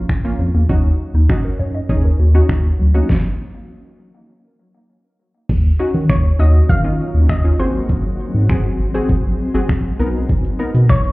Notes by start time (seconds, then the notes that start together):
Already playing: A#3 C#4 F4
0.09 C#4, finger snap, kick
0.24 A#1 A#3 C#4 F4
0.39 F2 F3
0.54 E2 A#3
0.69 D#2 F#3 C#4 D#4 F#4, kick
1.14 D#2 D#4
1.29 C#4 D#4 F#4, finger snap, kick
1.44 A#4
1.59 F#2 C#5
1.75 D#5
1.89 D#2 C#4 D#4 G#4 C#5, kick
2.04 A#4
2.19 D#2 F#4
2.34 C#4 D#4 F#4
2.49 D#2 C#4, finger snap, kick
2.79 D2 F#3
2.94 A#3 C#4 D#4 F#4
3.09 kick, snare
5.49 D#2 D#3 F#3 A#3 C#4, kick, crash
5.79 C#4 D#4 F#4
5.94 D#3
6.09 D#2 C#5, finger snap, kick
6.39 D#2 C#4 D#4 F#4 D#5
6.69 D#3 F5, kick
6.84 C#4 D#4 F4
7.14 D#2
7.29 D#2 D#5, finger snap, kick
7.44 C#4 D#4 F4
7.59 G#1 G#3 C4 F#4 G#4 C5
7.89 G#1, kick
8.34 G#2
8.49 G#1 C4 F#4 G#4, finger snap, kick
8.80 G#1
8.94 C4 F#4 G#4
9.09 kick
9.24 A#1
9.54 G#1 C4 F#4 G#4
9.69 A#1, finger snap, kick
9.99 B1 B3 D#4 A#4
10.29 kick
10.44 closed hi-hat
10.59 B3 D#4 A#4
10.74 B2, closed hi-hat
10.89 B1 C#5, finger snap, kick
11.04 closed hi-hat